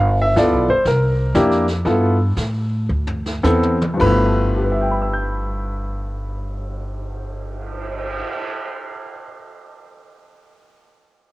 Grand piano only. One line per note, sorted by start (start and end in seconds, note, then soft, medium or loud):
0.00 0.20 F5 medium
0.22 0.37 E5 medium
0.36 0.65 B3 medium
0.36 0.65 E4 medium
0.36 0.65 F4 medium
0.36 0.66 A4 medium
0.36 0.69 D5 medium
0.70 0.85 C5 medium
0.88 1.32 A#4 medium
1.35 1.65 A#3 medium
1.35 1.65 D4 medium
1.35 1.65 E4 medium
1.35 1.65 G4 medium
1.86 2.16 B3 medium
1.86 2.16 E4 medium
1.86 2.16 F4 medium
1.86 2.16 A4 medium
3.43 3.76 B3 medium
3.43 3.76 C4 medium
3.43 3.76 E4 medium
3.43 3.77 A4 medium
3.94 8.18 G2 medium
3.94 8.21 F3 medium
4.00 8.24 A3 medium
4.00 8.27 B3 medium
4.00 4.62 B4 medium
4.06 8.30 E4 medium
4.56 8.77 G4 soft
4.64 8.85 B4 soft
4.72 8.93 E5 soft
4.81 9.02 G5 soft
4.91 9.12 B5 soft
5.02 9.23 E6 soft
5.14 9.34 G6 soft